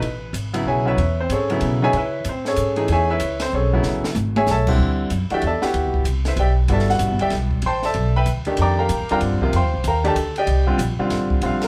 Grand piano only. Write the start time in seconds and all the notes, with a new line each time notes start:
Already playing: B4
0.53 C#3 F#3 B3 E4
0.68 G#4 C#5 E5 G#5
0.85 C#3 F#3 B3 E4 B4 C#5 E5
1.20 C4 C5
1.32 C#4 G#4 A4 C#5
1.50 C#3 F#3 B3 E4
1.82 C#3 F#3 B3 D#4 G#4 C#5 E5 G#5
1.97 E4 B4 C#5 E5
2.29 C4 C5
2.48 C#4 G#4 A4 C#5
2.76 E3 A3 D#4 G#4
2.92 G#4 C#5 E5 G#5
3.10 E4 B4 C#5 E5
3.42 C4 C5
3.55 C#4 G#4 A4 C#5
3.73 C#3 F#3 B3 E4
4.37 G#4 C#5 E5 G#5
4.51 A4 C#5 E5 A5
4.68 D3 G3 C4 E4
5.30 E3 A3 D4 F#4 G4 D5 E5 G5
5.47 A4 D5 E5 A5
5.62 B3 E4 F#4 G4
6.27 E4 B4 C5 E5
6.39 G4 D5 E5 G5
6.69 G3 B3 E4 F#4 A4 E5
6.73 D5 A5
6.90 F#4 F#5
7.21 G4 D5 E5 G5
7.66 C5 G5 A5 C6
7.85 A4 D5 E5 A5
8.16 B4 E5 G5 B5
8.46 D#3 A3 D4 G4
8.61 D5 G5 A#5 D6
8.79 A#4 F5 G5 A#5
9.11 D3 G3 C4 F4 A#4 F5 G5 A#5
9.42 C3 F3 A#3 F4
9.56 C5 F5 G5 C6
9.88 A#4 F5 G5 A#5
10.04 D#3 A3 D4 G4 A4 A5
10.38 G4 D5 D#5 G5
10.67 D3 G3 C4 F4
10.99 D3 G3 C4 F4
11.43 D3 G3 C4 F4 F5
11.64 A#4